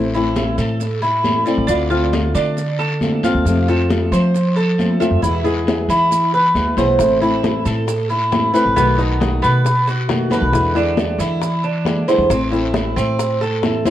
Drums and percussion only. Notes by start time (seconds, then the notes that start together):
0.14 high conga, maracas
0.36 high conga, short guiro, maracas
0.58 high conga, short guiro, maracas
0.80 high conga, long guiro, maracas
1.02 high conga, maracas
1.24 high conga, short guiro, maracas
1.47 short guiro, maracas
1.69 high conga, long guiro, maracas
1.91 high conga, maracas
2.13 high conga, short guiro, maracas
2.35 short guiro, maracas
2.57 high conga, long guiro, maracas
2.79 high conga, maracas
3.01 high conga, short guiro, maracas
3.23 high conga, short guiro, maracas
3.45 high conga, long guiro, maracas
3.69 high conga, maracas
3.90 high conga, short guiro, maracas
4.12 short guiro, maracas
4.34 high conga, long guiro, maracas
4.57 high conga, maracas
4.78 high conga, short guiro, maracas
5.01 high conga, short guiro, maracas
5.23 high conga, long guiro, maracas
5.45 high conga, maracas
5.67 high conga, short guiro, maracas
5.89 short guiro, maracas
6.11 high conga, long guiro, maracas
6.34 high conga, maracas
6.55 high conga, short guiro, maracas
6.77 high conga, short guiro, maracas
6.99 high bongo, long guiro, maracas
7.22 high conga, maracas
7.43 high bongo, high conga, short guiro, maracas
7.66 high conga, short guiro, maracas
7.88 high bongo, high conga, long guiro, maracas
8.10 high conga, maracas
8.32 high bongo, low bongo, high conga, short guiro, maracas
8.55 short guiro, maracas
8.77 high bongo, high conga, long guiro, maracas
8.99 high bongo, high conga, maracas
9.20 high bongo, high conga, short guiro, maracas
9.42 high bongo, short guiro, maracas
9.65 high bongo, high conga, long guiro, maracas
9.88 high bongo, high conga, maracas
10.09 high bongo, low bongo, high conga, short guiro, maracas
10.31 high conga, short guiro, maracas
10.54 high bongo, high conga, long guiro, maracas
10.76 high conga, maracas
10.97 high bongo, high conga, short guiro, maracas
11.19 high conga, short guiro, maracas
11.42 high bongo, high conga, long guiro, maracas
11.64 high conga, maracas
11.85 high bongo, low bongo, high conga, short guiro, maracas
12.08 short guiro, maracas
12.30 high bongo, high conga, long guiro, maracas
12.52 high bongo, high conga, maracas
12.74 high bongo, high conga, short guiro, maracas
12.97 high bongo, short guiro, maracas
13.19 high bongo, high conga, long guiro, maracas
13.41 high bongo, high conga, maracas
13.63 high bongo, low bongo, high conga, short guiro, maracas
13.85 high conga, short guiro, maracas